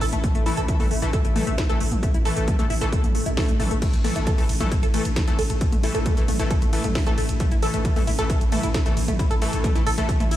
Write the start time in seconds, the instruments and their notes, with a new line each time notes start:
Already playing: synth drone A2 E3
0.01 808-style bass A1, synth arpeggio sound A4, open hi-hat
0.12 808-style bass A1, synth arpeggio sound A3, closed hi-hat
0.24 kick, closed hi-hat, mid tom
0.35 808-style bass A1, synth arpeggio sound A3, closed hi-hat
0.46 supersaw synth E3 A3 A4, synth arpeggio sound E4, open hi-hat
0.57 808-style bass A1, synth arpeggio sound A4, closed hi-hat
0.68 synth arpeggio sound A3, kick, closed hi-hat
0.80 808-style bass A1, supersaw synth E3 A3 A4, mid tom, open hi-hat
0.91 808-style bass A1, synth arpeggio sound A3, open hi-hat
1.02 808-style bass A1, supersaw synth E3 A3 A4, synth arpeggio sound E4, closed hi-hat
1.13 synth arpeggio sound A4, kick, closed hi-hat
1.25 808-style bass A1, synth arpeggio sound A3, closed hi-hat
1.36 supersaw synth E3 A3 A4, mid tom, open hi-hat
1.47 808-style bass A1, synth arpeggio sound A3, closed hi-hat
1.58 synth arpeggio sound E4, kick, snare, closed hi-hat
1.69 808-style bass A1, supersaw synth E3 A3 A4, synth arpeggio sound A4, closed hi-hat
1.80 808-style bass A1, synth arpeggio sound A3, open hi-hat
1.92 808-style bass A1, closed hi-hat, mid tom
2.03 synth arpeggio sound A3, kick, closed hi-hat
2.14 808-style bass A1, synth arpeggio sound E4, closed hi-hat
2.25 supersaw synth E3 A3 A4, synth arpeggio sound A4, open hi-hat
2.36 808-style bass A1, synth arpeggio sound A3, closed hi-hat
2.48 kick, closed hi-hat, mid tom
2.59 808-style bass A1, supersaw synth E3 A3 A4, synth arpeggio sound A3, closed hi-hat
2.70 808-style bass A1, synth arpeggio sound E4, open hi-hat
2.81 808-style bass A1, supersaw synth E3 A3 A4, synth arpeggio sound A4, closed hi-hat
2.92 synth arpeggio sound A3, kick, closed hi-hat, swell
3.04 808-style bass A1, closed hi-hat, mid tom
3.15 synth arpeggio sound A3, open hi-hat
3.26 808-style bass A1, synth arpeggio sound E4, closed hi-hat
3.37 supersaw synth E3 A3 A4, synth arpeggio sound A4, kick, snare, open hi-hat
3.48 808-style bass A1, synth arpeggio sound A3, closed hi-hat
3.60 808-style bass A1, supersaw synth E3 A3 A4, mid tom, open hi-hat
3.71 808-style bass A1, synth arpeggio sound A3, closed hi-hat
3.82 synth drone A2 E3, synth arpeggio sound A3, kick, closed hi-hat, crash, ride
3.93 808-style bass A1, closed hi-hat, ride
4.04 supersaw synth E3 A3 A4, synth arpeggio sound A3, mid tom, open hi-hat, ride
4.16 808-style bass A1, synth arpeggio sound E4, closed hi-hat, ride
4.27 synth arpeggio sound A4, kick, closed hi-hat, ride
4.38 808-style bass A1, supersaw synth E3 A3 A4, synth arpeggio sound A3, open hi-hat, ride
4.49 808-style bass A1, open hi-hat, ride
4.60 808-style bass A1, supersaw synth E3 A3 A4, synth arpeggio sound A3, closed hi-hat, mid tom, ride
4.72 synth arpeggio sound E4, kick, closed hi-hat, ride
4.83 808-style bass A1, synth arpeggio sound A4, closed hi-hat, ride
4.94 supersaw synth E3 A3 A4, synth arpeggio sound A3, open hi-hat, ride
5.05 808-style bass A1, closed hi-hat, ride
5.16 synth arpeggio sound A3, kick, snare, closed hi-hat, mid tom, ride
5.28 808-style bass A1, supersaw synth E3 A3 A4, synth arpeggio sound E4, closed hi-hat, ride
5.39 808-style bass A1, synth arpeggio sound A4, open hi-hat, ride
5.50 808-style bass A1, synth arpeggio sound A3, closed hi-hat, ride
5.61 kick, closed hi-hat, ride
5.72 808-style bass A1, synth arpeggio sound A3, closed hi-hat, mid tom, ride
5.83 supersaw synth E3 A3 A4, synth arpeggio sound E4, open hi-hat, ride
5.95 808-style bass A1, synth arpeggio sound A4, closed hi-hat, ride
6.06 synth arpeggio sound A3, kick, closed hi-hat, ride
6.17 808-style bass A1, supersaw synth E3 A3 A4, closed hi-hat, ride
6.28 808-style bass A1, synth arpeggio sound A3, mid tom, open hi-hat, ride
6.39 808-style bass A1, supersaw synth E3 A3 A4, synth arpeggio sound E4, closed hi-hat, ride
6.51 synth arpeggio sound A4, kick, closed hi-hat, ride
6.62 808-style bass A1, synth arpeggio sound A3, closed hi-hat, ride
6.73 supersaw synth E3 A3 A4, open hi-hat, ride
6.84 808-style bass A1, synth arpeggio sound A3, closed hi-hat, mid tom, ride
6.95 synth arpeggio sound E4, kick, snare, open hi-hat, ride
7.06 808-style bass A1, supersaw synth E3 A3 A4, synth arpeggio sound A4, closed hi-hat, ride
7.18 808-style bass A1, synth arpeggio sound A3, open hi-hat, ride
7.29 808-style bass A1, closed hi-hat, ride
7.40 synth arpeggio sound A3, kick, closed hi-hat, mid tom, ride
7.51 808-style bass A1, synth arpeggio sound E4, closed hi-hat, ride
7.62 supersaw synth E3 A3 A4, synth arpeggio sound A4, open hi-hat, ride
7.74 808-style bass A1, synth arpeggio sound A3, closed hi-hat, ride
7.85 kick, closed hi-hat, ride
7.96 808-style bass A1, supersaw synth E3 A3 A4, synth arpeggio sound A3, mid tom, open hi-hat, ride
8.07 808-style bass A1, synth arpeggio sound E4, open hi-hat, ride
8.19 808-style bass A1, supersaw synth E3 A3 A4, synth arpeggio sound A4, closed hi-hat, ride
8.30 synth arpeggio sound A3, kick, closed hi-hat, ride
8.41 808-style bass A1, closed hi-hat, ride
8.52 supersaw synth E3 A3 A4, synth arpeggio sound A3, mid tom, open hi-hat, ride
8.63 808-style bass A1, synth arpeggio sound E4, closed hi-hat, ride
8.74 synth arpeggio sound A4, kick, snare, closed hi-hat, ride
8.86 808-style bass A1, supersaw synth E3 A3 A4, synth arpeggio sound A3, closed hi-hat, ride
8.97 808-style bass A1, open hi-hat, ride
9.08 808-style bass A1, synth arpeggio sound A3, closed hi-hat, mid tom, ride
9.19 synth arpeggio sound E4, kick, closed hi-hat, ride
9.31 808-style bass A1, synth arpeggio sound A4, closed hi-hat, ride
9.42 supersaw synth E3 A3 A4, synth arpeggio sound A3, open hi-hat, ride
9.53 808-style bass A1, closed hi-hat, ride
9.64 synth arpeggio sound A3, kick, closed hi-hat, mid tom, ride
9.75 808-style bass A1, supersaw synth E3 A3 A4, synth arpeggio sound E4, closed hi-hat, ride
9.87 808-style bass A1, synth arpeggio sound A4, open hi-hat, ride
9.98 808-style bass A1, supersaw synth E3 A3 A4, synth arpeggio sound A3, closed hi-hat, ride
10.09 kick, closed hi-hat, ride
10.20 808-style bass A1, synth arpeggio sound A3, closed hi-hat, mid tom, ride
10.31 synth arpeggio sound E4, open hi-hat, ride